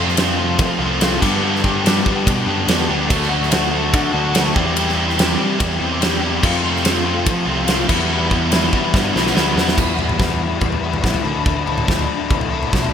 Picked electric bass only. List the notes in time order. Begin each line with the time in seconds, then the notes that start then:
Already playing: F2
0.59 F3
0.79 C2
1.22 G2
2.27 B2
2.46 F#2
2.67 E2
2.88 D2
3.10 D2
3.94 D3
4.13 D2
4.56 E2
5.61 E2
5.81 E2
6.43 F2
7.26 F3
7.47 C2
7.89 E2
8.94 G2
9.15 B1
9.35 D2
9.56 E2
9.78 E2
10.20 E2
10.61 E2
11.04 A1
11.24 D2
11.88 D2
12.30 C2
12.73 B1